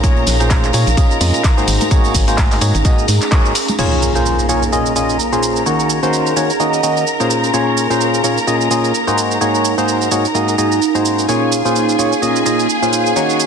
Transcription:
Already playing: fm bass A#1, ambient pad C#4 D#4 G#4 F5, string section A#4 A#5
0.03 synth stab A#2 A#3 C#4 F4 G#4 C#5, kick, closed hi-hat, tambourine, shaker
0.17 closed hi-hat
0.27 fm bass A#1, snare, closed hi-hat, open hi-hat, tambourine, shaker
0.40 synth stab A#2 A#3 C#4 F4 G#4 C5, closed hi-hat, tambourine, shaker
0.50 kick, snare, clap, closed hi-hat, tambourine, high conga, shaker
0.64 clap, closed hi-hat, shaker
0.73 synth stab A#2 A#3 C#4 F4 G#4 C#5, fm bass A#2, closed hi-hat, open hi-hat, tambourine, shaker
0.87 fm bass A#1, closed hi-hat, tambourine, shaker
0.97 synth stab A#2 A#3 C#4 F4 G#4 D#5, kick, closed hi-hat, tambourine, shaker
1.11 shaker
1.21 fm bass F2, synth stab A#2 A#3 C#4 F4 G#4 D#5, closed hi-hat, open hi-hat, tambourine, high conga, shaker
1.34 closed hi-hat, tambourine, shaker
1.44 kick, snare, clap, closed hi-hat, tambourine, shaker
1.57 synth stab G#2 A#3 D#4 F#4 G#4 C5, snare, shaker
1.68 fm bass G#1, closed hi-hat, open hi-hat, tambourine, shaker
1.81 closed hi-hat, tambourine, high conga, shaker
1.91 synth stab G#2 A#3 D#4 F#4 G#4 C#5, kick, closed hi-hat, tambourine, shaker
2.04 closed hi-hat, tambourine, shaker
2.14 fm bass G#1, kick, closed hi-hat, open hi-hat, tambourine, shaker
2.28 synth stab G#2 A#3 D#4 F#4 G#4 C5, closed hi-hat, tambourine, shaker
2.38 kick, snare, clap, closed hi-hat, tambourine, high conga, shaker
2.51 clap, open hi-hat, tambourine, shaker
2.61 synth stab G#2 A#3 D#4 F#4 G#4 C#5, fm bass G#2, closed hi-hat, open hi-hat, tambourine, shaker
2.75 fm bass G#1, closed hi-hat, tambourine, shaker
2.85 synth stab G#2 A#3 D#4 F#4 G#4 D#5, kick, closed hi-hat, tambourine, shaker
2.98 shaker
3.08 fm bass G#2, snare, closed hi-hat, open hi-hat, tambourine, high conga, shaker
3.22 clap, closed hi-hat, tambourine, shaker
3.31 synth stab G#2 A#3 D#4 F#4 G#4 C#5, kick, clap, closed hi-hat, tambourine, shaker
3.45 shaker
3.55 closed hi-hat, open hi-hat, tambourine, shaker
3.68 closed hi-hat, tambourine, high conga, shaker
3.79 synth stab A#2 A#3 C#4 F4 G#4 C#5, ambient pad A#3, string section A#4 A#5, crash, impact, shaker
4.02 shaker
4.15 synth stab A#2 A#3 C#4 F4 G#4 C5, shaker
4.26 shaker
4.39 shaker
4.49 synth stab A#2 A#3 C#4 F4 G#4 C#5, shaker
4.63 shaker
4.72 synth stab A#2 A#3 C#4 F4 G#4 D#5, shaker
4.86 shaker
4.96 synth stab A#2 A#3 C#4 F4 G#4 D#5, shaker
5.09 shaker
5.20 shaker
5.33 synth stab A#2 A#3 C#4 F4 G#4 C5, shaker
5.43 shaker
5.56 shaker
5.66 synth stab D#3 A#3 C#4 D#4 F#4 C#5, shaker
5.80 shaker
5.90 shaker
6.03 synth stab D#3 A#3 C#4 D#4 F#4 C5, shaker
6.13 shaker
6.26 shaker
6.36 synth stab D#3 A#3 C#4 D#4 F#4 C#5, shaker
6.50 shaker
6.60 synth stab D#3 A#3 C#4 D#4 F#4 D#5, shaker
6.73 shaker
6.83 synth stab D#3 A#3 C#4 D#4 F#4 D#5, shaker
6.97 shaker
7.07 shaker
7.20 synth stab A#2 A#3 C#4 F4 G#4 C5, shaker
7.30 ambient pad A#3, shaker
7.44 shaker
7.54 synth stab A#2 A#3 C#4 F4 G#4 C#5, shaker
7.77 shaker
7.90 synth stab A#2 A#3 C#4 F4 G#4 C5, shaker
8.01 shaker
8.14 shaker
8.24 synth stab A#2 A#3 C#4 F4 G#4 C#5, shaker
8.37 shaker
8.47 synth stab A#2 A#3 C#4 F4 G#4 D#5, shaker
8.61 shaker
8.71 synth stab A#2 A#3 C#4 F4 G#4 D#5, shaker
8.84 shaker
8.95 shaker
9.07 synth stab G#2 A#3 D#4 F#4 G#4 C5, shaker
9.18 ambient pad D#4, shaker
9.31 shaker
9.41 synth stab G#2 A#3 D#4 F#4 G#4 C#5, shaker
9.55 ambient pad G#4, shaker
9.65 ambient pad C#4, shaker
9.74 synth stab G#2 A#3 D#4 F#4 G#4 C5, ambient pad F5
9.78 shaker
9.88 shaker
10.01 shaker
10.11 synth stab G#2 A#3 D#4 F#4 G#4 C#5, shaker
10.25 shaker
10.35 synth stab G#2 A#3 D#4 F#4 G#4 D#5, shaker
10.48 shaker
10.58 synth stab G#2 A#3 D#4 F#4 G#4 D#5, shaker
10.72 shaker
10.82 shaker
10.95 synth stab G#2 A#3 D#4 F#4 G#4 C5, shaker
11.05 shaker
11.19 shaker
11.29 synth stab A#2 A#3 C#4 F4 G#4 C#5, ambient pad A#3, string section G#4 G#5, shaker
11.52 shaker
11.65 synth stab A#2 A#3 C#4 F4 G#4 C5, shaker
11.76 shaker
11.89 shaker
11.99 synth stab A#2 A#3 C#4 F4 G#4 C#5, shaker
12.12 shaker
12.22 synth stab A#2 A#3 C#4 F4 G#4 D#5, shaker
12.36 shaker
12.46 synth stab A#2 A#3 C#4 F4 G#4 D#5, shaker
12.59 shaker
12.70 shaker
12.82 synth stab A#2 A#3 C#4 F4 G#4 C5, shaker
12.93 shaker
13.06 shaker
13.16 synth stab D#3 A#3 C#4 D#4 F#4 C#5, shaker
13.30 shaker
13.40 shaker

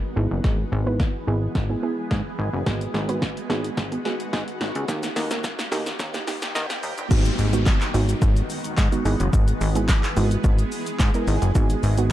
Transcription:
Already playing: ambient pad D#3 G#3 B3 F#4, synth pluck B3 F#4 A#4, riser
0.16 analog synth bass G#1, ambient pad E3 G#3 B3 G#4, synth pluck B3 E4 G#4
0.31 analog synth bass F#1
0.44 analog synth bass G#1, kick, snare
0.72 analog synth bass G#1
0.86 synth pluck B3 E4 B4
1.00 kick, snare
1.27 analog synth bass G#1, synth pluck B3 E4 G#4
1.55 analog synth bass G#1, kick, snare
1.70 synth pluck B3 E4 G#4
1.83 synth pluck B3 E4 G#4
2.11 analog synth bass G#2, kick, snare
2.39 analog synth bass G#1
2.53 analog synth bass F#1
2.66 analog synth bass G#1, ambient pad D#3 F#4, synth pluck B3 F#4 G#4, kick, snare
2.81 closed hi-hat
2.94 analog synth bass G#1, snare
3.09 synth pluck B3 F#4 B4, closed hi-hat
3.22 kick, snare
3.37 closed hi-hat
3.49 analog synth bass G#1, synth pluck B3 F#4 G#4, snare
3.64 closed hi-hat
3.77 analog synth bass G#1, kick, snare
3.92 synth pluck B3 F#4 G#4, closed hi-hat
4.05 synth pluck B3 F#4 G#4, snare
4.20 closed hi-hat
4.33 analog synth bass G#2, kick, snare
4.48 closed hi-hat
4.61 analog synth bass G#1, snare
4.75 analog synth bass C#2, closed hi-hat
4.88 analog synth bass D#2, ambient pad G3 A#3 G4, synth pluck A#3 D#4 G4, kick, snare, shaker
5.03 snare, closed hi-hat, shaker
5.16 analog synth bass D#2, snare, open hi-hat, shaker
5.30 synth pluck A#3 D#4 A#4, snare, closed hi-hat, shaker
5.44 kick, snare, shaker
5.59 snare, closed hi-hat, shaker
5.71 analog synth bass D#2, synth pluck A#3 D#4 G4, snare, open hi-hat, shaker
5.86 snare, closed hi-hat, shaker
5.99 analog synth bass D#2, kick, snare, shaker
6.14 synth pluck A#3 D#4 G4, snare, closed hi-hat, shaker
6.27 synth pluck A#3 D#4 G4, snare, open hi-hat, shaker
6.42 snare, closed hi-hat, shaker
6.55 analog synth bass D#3, snare, shaker
6.70 snare, closed hi-hat, shaker
6.83 analog synth bass D#2, open hi-hat, shaker
6.98 analog synth bass G1, closed hi-hat, shaker
7.11 analog synth bass G#1, ambient pad D#3 G#3 B3 F#4, synth pluck G#3 B3 D#4 F#4, kick, crash, downlifter, shaker
7.25 closed hi-hat, shaker
7.39 analog synth bass G#1, open hi-hat, shaker
7.53 synth pluck G#3 B3 D#4 F#4, closed hi-hat, shaker
7.66 kick, snare, clap, shaker
7.81 clap, closed hi-hat, shaker
7.94 analog synth bass G#1, synth pluck G#3 B3 D#4 F#4, open hi-hat, shaker
8.09 closed hi-hat, shaker
8.22 analog synth bass G#1, kick, shaker
8.37 closed hi-hat, shaker
8.50 open hi-hat, shaker
8.64 closed hi-hat, shaker
8.77 analog synth bass G#2, kick, snare, clap, shaker
8.92 synth pluck G#3 B3 D#4 F#4, closed hi-hat, shaker
9.05 analog synth bass G#1, ambient pad E3 G#4, synth pluck G#3 B3 E4 G#4, open hi-hat, shaker
9.20 analog synth bass F#1, closed hi-hat, shaker
9.33 analog synth bass G#1, kick, shaker
9.48 closed hi-hat, shaker
9.61 analog synth bass G#1, open hi-hat, shaker
9.75 synth pluck G#3 B3 E4 G#4, closed hi-hat, shaker
9.88 kick, snare, clap, shaker
10.03 clap, closed hi-hat, shaker
10.16 analog synth bass G#1, synth pluck G#3 B3 E4 F#4, open hi-hat, shaker
10.31 closed hi-hat, shaker
10.44 analog synth bass G#1, kick, shaker
10.59 closed hi-hat, shaker
10.72 open hi-hat, shaker
10.86 closed hi-hat, shaker
10.99 analog synth bass G#2, kick, snare, clap, shaker
11.14 synth pluck G#3 B3 E4 A#4, closed hi-hat, shaker
11.27 analog synth bass G#1, open hi-hat, shaker
11.42 analog synth bass F#1, closed hi-hat, shaker
11.55 analog synth bass G#1, ambient pad D#3 B3 F#4, synth pluck G#3 B3 D#4 F#4, kick, shaker
11.70 closed hi-hat, shaker
11.83 analog synth bass G#1, open hi-hat, shaker
11.98 synth pluck G#3 B3 D#4 F#4, closed hi-hat, shaker

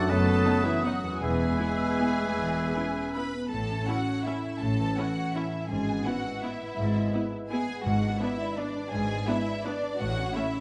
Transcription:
Already playing: harp F#2 A3 B3, bassoon A3, clarinet D4, violin section F#4 F#5, oboe A4
0.01 harp D#4
0.06 harp B4
0.10 double bass section F#1, cello section F#2, bassoon F#3, french horn section A3, clarinet B3, violin section A4 A5, oboe B4, flute section D#6
0.46 viola section B3 D#4
0.65 french horn section E3, violin section E4 E5
0.84 french horn section F#3, viola section B3 D#4, violin section F#4 F#5
1.03 harp E2
1.08 harp B3
1.12 harp E4
1.17 french horn section G#3, harp B4
1.21 double bass section E1, cello section E2, bassoon E3, clarinet B3, violin section G#4 G#5, oboe B4, flute section E6
1.60 clarinet B3, viola section B3 E4
2.01 viola section B3 E4
2.20 clarinet A3
2.38 double bass section E1, cello section E2, clarinet B3
2.76 viola section B3 E4, clarinet C#4
3.14 viola section B3 E4, violin section B4 B5
3.35 clarinet B3
3.50 double bass section A1, cello section A2, harp A2, violin section A4 A5
3.70 harp C#4
3.88 viola section C#4 E4, violin section F#4 F#5, harp A4
4.08 harp C#5
4.26 viola section C#4 E4, violin section E4 E5, harp A4
4.44 harp C#4
4.61 double bass section A1, harp A2, cello section A2, violin section A4 A5
4.80 harp E3
4.97 viola section C#4 E4, violin section F#4 F#5, harp A4
5.17 harp C#5
5.36 viola section C#4 E4, violin section E4 E5, harp A4
5.54 harp C#4
5.70 double bass section G#1, cello section G#2, harp G#2, violin section G#4 G#5
5.89 harp B3
6.05 viola section B3 E4, violin section F#4 F#5, harp B4
6.26 harp E4
6.43 viola section B3 E4, violin section E4 E5, harp B4
6.62 harp B3
6.78 double bass section G#1, cello section G#2, harp G#2
6.96 harp G#3
7.13 viola section B3 E4, harp B4
7.32 harp E4
7.49 viola section B3 E4, violin section G#4 G#5, harp B4
7.69 harp B3
7.85 double bass section G#1, cello section G#2, harp G#2, timpani G#2, violin section F#4 F#5
8.03 harp D4
8.20 viola section B3 D4, violin section E4 E5, harp B4
8.40 harp D5
8.57 viola section B3 D4, violin section D4 D5, harp B4
8.76 harp D4
8.91 double bass section G#1, cello section G#2, harp G#2, violin section G#4 G#5
9.10 harp G#3
9.28 viola section B3 D4, violin section E4 E5, harp B4
9.47 harp D5
9.65 viola section B3 D4, violin section D4 D5, harp B4
9.83 harp D4
9.99 double bass section A1, cello section A2, harp A2, violin section F#4 F#5
10.17 harp C#4
10.34 viola section A3 C#4, violin section E4 E5, harp C#5
10.55 harp E4

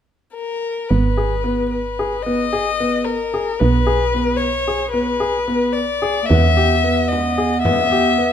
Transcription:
0.35 violin A#4
0.89 fm bass G#1, grand piano B3, violin B4
1.17 grand piano G#4
1.44 grand piano B3
1.70 violin B4
1.99 grand piano G#4
2.23 grand piano B3, violin D#5
2.53 grand piano G#4
2.80 grand piano B3
3.05 violin A#4
3.34 grand piano G#4
3.59 fm bass B1, grand piano B3, violin B4
3.87 grand piano G#4
4.14 grand piano B3
4.37 violin C#5
4.68 grand piano G#4
4.91 grand piano B3, violin B4
5.20 grand piano G#4
5.48 grand piano B3
5.72 violin D5
6.02 grand piano G#4
6.23 clarinet A#3, violin E5
6.29 fm bass E2, grand piano B3, clarinet B3, frame drum
6.57 grand piano G4
6.84 grand piano B3
7.08 violin D#5, frame drum
7.38 grand piano G#4
7.62 grand piano B3, violin E5, frame drum
7.92 grand piano G4
8.18 grand piano B3

